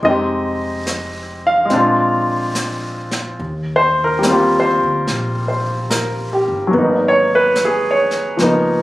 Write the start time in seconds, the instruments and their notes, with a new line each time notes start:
0.03 upright bass F1, grand piano G#3 C4 D#4 D#5, brush sweep
0.08 grand piano G4
0.87 snare, hi-hat pedal
1.47 grand piano F5
1.65 grand piano G#3
1.70 upright bass A#1, grand piano C4 D4, brush sweep, snare
1.77 grand piano F4
2.55 snare, hi-hat pedal
3.11 snare
3.39 upright bass D#2, brush sweep
3.76 grand piano C5
4.04 grand piano A#4
4.19 grand piano G3 A#3
4.23 grand piano C4, snare, hi-hat pedal
4.30 grand piano F4 G4
4.60 grand piano C5
4.80 upright bass D2
5.07 upright bass A#1, brush sweep, snare
5.48 grand piano C5
5.90 grand piano A#4, snare, hi-hat pedal
6.33 grand piano G4
6.48 upright bass G1
6.67 grand piano F#3 A#3
6.73 upright bass G#1, grand piano B3, brush sweep
6.78 grand piano D#4
7.08 grand piano C#5
7.35 grand piano B4
7.56 snare, hi-hat pedal
7.65 grand piano G#4
7.91 grand piano C#5
8.11 snare
8.37 upright bass C#2, grand piano F3 A#3, brush sweep, snare
8.41 grand piano B3 D#4